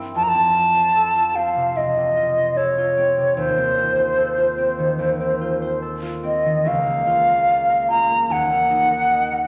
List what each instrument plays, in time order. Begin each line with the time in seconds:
Already playing: harp G2 C4 E4 A#4 C5 E5
0.15 harp F2, flute A5
0.23 flute A#5
0.28 flute A5
0.35 harp C4
0.55 harp F4
0.74 harp C5
0.95 harp A4
1.15 harp F4
1.36 harp C4, flute F5
1.55 harp C3
1.76 harp C4, flute D#5
1.97 harp C3
2.16 harp F4
2.37 harp C5
2.57 harp A4, flute C#5
2.78 harp F4
2.97 harp C4
3.17 harp C3
3.37 harp D#2, flute C5
3.57 harp C4
3.78 harp F4
3.97 harp C5
4.17 harp A4
4.38 harp F4
4.58 harp C4
4.79 harp D#3
4.99 harp D#2
5.20 harp C4
5.41 harp F4
5.62 harp C5
5.82 harp A4
6.02 harp F4
6.23 harp C4, flute D#5
6.45 harp D#3
6.65 harp C#2, flute F5
6.86 harp A#3
7.07 harp F4
7.28 harp A#4
7.48 harp F5
7.70 harp A#4
7.90 harp F4, flute A#5
8.10 harp A#3
8.30 harp D#2, flute F#5
8.51 harp A#3
8.70 harp D#4
8.90 harp A#4
9.11 harp D#5
9.32 harp A#4